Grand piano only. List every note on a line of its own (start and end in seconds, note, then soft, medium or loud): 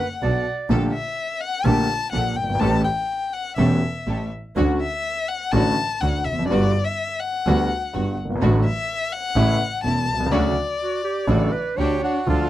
0.22 0.42 B1 soft
0.22 0.42 B2 soft
0.69 0.90 A#1 medium
0.69 0.90 A#2 medium
0.69 0.90 D3 medium
0.69 0.90 A3 medium
0.69 0.90 A#3 medium
0.69 0.90 G4 medium
1.65 1.86 A#1 medium
1.65 1.86 A#2 medium
1.65 1.85 D3 medium
1.65 1.85 A3 medium
1.65 1.86 A#3 medium
1.65 1.86 G4 medium
2.13 2.33 A#1 medium
2.13 2.33 A#2 soft
2.43 2.49 F#1 soft
2.49 2.55 G1 medium
2.55 2.61 G#1 medium
2.61 2.81 A1 medium
2.61 2.81 A2 medium
2.61 2.81 E3 medium
2.61 2.81 A3 medium
2.61 2.81 C#4 soft
2.61 2.82 G4 medium
3.58 3.79 E1 medium
3.58 3.79 E2 medium
3.58 3.78 E3 medium
3.58 3.79 A3 medium
3.58 3.79 C#4 medium
3.58 3.79 G4 medium
4.07 4.28 A1 soft
4.07 4.28 A2 soft
4.56 4.77 D2 medium
4.56 4.77 D3 medium
4.56 4.77 A3 medium
4.56 4.77 C#4 medium
4.56 4.77 F#4 medium
5.53 5.73 A1 medium
5.53 5.74 A2 medium
5.53 5.73 D3 medium
5.53 5.73 A3 medium
5.53 5.73 C#4 soft
5.53 5.74 F#4 medium
6.02 6.22 D2 soft
6.02 6.22 D3 soft
6.33 6.38 E2 soft
6.39 6.45 F2 medium
6.45 6.51 F#2 medium
6.51 6.71 G1 medium
6.51 6.71 G2 medium
6.51 6.71 D3 medium
6.51 6.71 G3 medium
6.51 6.71 B3 medium
6.51 6.71 F#4 medium
7.47 7.67 D2 medium
7.47 7.67 D3 medium
7.47 7.67 G3 medium
7.47 7.67 B3 medium
7.47 7.67 F#4 medium
7.94 8.14 G1 soft
7.94 8.14 G2 medium
8.25 8.30 F#1 soft
8.30 8.35 G1 medium
8.36 8.41 G#1 medium
8.42 8.61 A1 medium
8.42 8.62 A2 medium
8.42 8.61 D3 medium
8.42 8.61 F#3 medium
8.42 8.62 A3 medium
8.42 8.61 F#4 medium
9.36 9.56 A1 medium
9.36 9.56 A2 medium
9.36 9.56 C#3 medium
9.36 9.56 E3 medium
9.36 9.56 A3 medium
9.36 9.56 E4 medium
9.84 10.04 E1 medium
9.84 10.04 E2 soft
10.14 10.20 B1 soft
10.20 10.26 C2 medium
10.26 10.32 C#2 medium
10.32 10.52 D2 medium
10.32 10.52 C#3 medium
10.32 10.52 D3 medium
10.32 10.52 F#3 medium
10.32 10.52 A3 medium
10.32 10.52 D4 medium
11.27 11.48 A1 medium
11.27 11.48 A2 medium
11.27 11.48 C#3 medium
11.27 11.48 F#3 medium
11.27 11.48 A3 medium
11.27 11.48 D4 medium
11.77 11.98 D2 soft
11.77 11.98 D3 soft
12.26 12.47 D2 medium
12.26 12.47 D3 medium
12.26 12.47 F3 soft
12.26 12.47 A3 soft
12.26 12.47 F4 medium